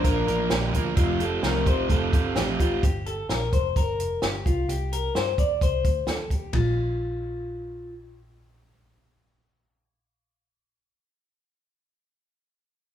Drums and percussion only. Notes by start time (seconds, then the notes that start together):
0.04 kick, closed hi-hat
0.28 closed hi-hat
0.50 snare, closed hi-hat
0.74 kick, closed hi-hat
0.97 kick, closed hi-hat
1.20 closed hi-hat
1.43 snare, closed hi-hat
1.66 kick, closed hi-hat
1.90 kick, closed hi-hat
2.13 kick, closed hi-hat
2.36 snare, closed hi-hat
2.60 kick, closed hi-hat
2.83 kick, closed hi-hat
3.06 closed hi-hat
3.29 snare, closed hi-hat
3.53 kick, closed hi-hat
3.76 kick, closed hi-hat
4.00 closed hi-hat
4.22 snare, closed hi-hat
4.46 kick, closed hi-hat
4.69 closed hi-hat
4.93 closed hi-hat
5.15 snare, closed hi-hat
5.38 kick, closed hi-hat
5.61 kick, closed hi-hat
5.85 kick, closed hi-hat
6.07 snare, closed hi-hat
6.30 kick, closed hi-hat
6.53 kick, floor tom, ride bell